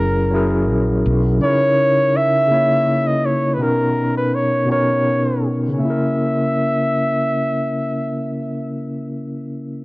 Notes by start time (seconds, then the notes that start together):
Already playing: F#1 F#3 C#4 E4 G#4 A#4
0.30 F#3 C#4 E4
0.35 G#4 A#4
0.69 A#1
1.06 B1
1.39 C#3 C#4 D#4 C#5
1.43 E4 A#4
2.17 E5
2.48 C#3 A#3 C#4
2.52 E4 C#5
3.07 D#5
3.26 C#5
3.54 B2 B4
3.59 B3 C#4 D#4 A#4
4.17 B4
4.35 C#5
4.66 B2 B3 C#4
4.70 D#4 A#4 C#5
5.68 C#3
5.74 C#4
5.79 A#3 E5
5.85 E4
5.90 A#4